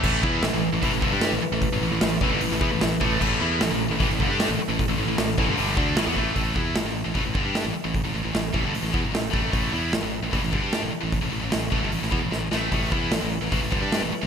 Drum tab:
CC |x---------------|----------------|x---------------|----------------|
HH |----o---o---o---|o---o---o---o---|----o---o---o---|o---o---o---o---|
SD |----o----o--o---|----o----o--o---|----o----o--o---|----o----o--o---|
BD |o-o-----o-o-----|o-----o---o---o-|o-------o-o-----|o-----o---o---o-|

CC |----------------|----------------|----------------|----------------|
HH |o---o---o---o---|o---o---o---o---|o---o---o---o---|o---o---o-------|
SD |----o-------o---|----o----o--o---|----o----o--o---|----o----o--o-o-|
BD |o-o-----o-o-----|o-----o---o---o-|o-------o-o-----|o-----o---o-----|

CC |----------------|
HH |o---o---o---o---|
SD |----o----o--o---|
BD |o-o-----o-o-----|